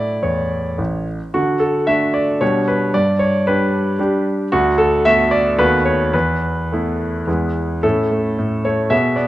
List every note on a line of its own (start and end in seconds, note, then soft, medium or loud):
0.00 0.82 A2 soft
0.00 0.11 E4 soft
0.00 0.22 D5 medium
0.23 0.62 E2 soft
0.23 1.07 C#5 soft
0.78 1.17 A1 soft
1.34 1.87 D3 soft
1.34 1.62 F#4 medium
1.60 1.88 A4 medium
1.87 2.37 A3 soft
1.87 2.37 D4 soft
1.87 2.37 F#4 soft
1.87 2.14 E5 medium
2.14 2.41 D5 medium
2.41 2.92 B2 soft
2.41 2.90 G3 soft
2.41 2.90 D4 soft
2.41 2.90 G4 soft
2.41 2.67 C#5 medium
2.68 2.94 B4 medium
2.94 3.45 G2 soft
2.94 3.20 D5 medium
3.19 3.46 C#5 medium
3.47 3.95 G3 soft
3.47 3.95 D4 soft
3.47 3.96 G4 soft
3.47 4.25 B4 medium
3.99 4.47 G3 soft
3.99 4.47 D4 soft
3.99 4.48 G4 soft
4.52 5.03 D2 soft
4.52 4.78 F#4 medium
4.78 5.04 A4 medium
5.05 5.54 A3 soft
5.05 5.54 B3 soft
5.05 5.55 F#4 soft
5.05 5.31 E5 medium
5.31 5.58 D5 medium
5.59 6.13 D#2 medium
5.59 6.10 A3 soft
5.59 6.11 B3 soft
5.59 6.11 F#4 soft
5.59 5.86 B4 medium
5.85 6.14 C#5 medium
6.13 6.69 E2 soft
6.13 7.56 B4 medium
6.72 7.24 A3 soft
6.72 7.24 B3 soft
6.72 7.25 E4 soft
7.27 7.82 E2 soft
7.27 7.80 G#3 soft
7.27 7.81 B3 soft
7.27 7.80 E4 soft
7.83 8.37 A2 soft
7.83 8.88 C#4 soft
7.83 8.88 E4 soft
7.83 8.65 A4 medium
8.11 8.64 A3 soft
8.39 8.91 A2 soft
8.65 8.91 A3 soft
8.65 8.92 C#5 medium
8.90 9.28 B2 soft
8.90 9.15 B3 soft
8.90 9.28 G#4 soft
8.90 9.18 E5 medium
9.16 9.28 B3 soft
9.16 9.28 D5 soft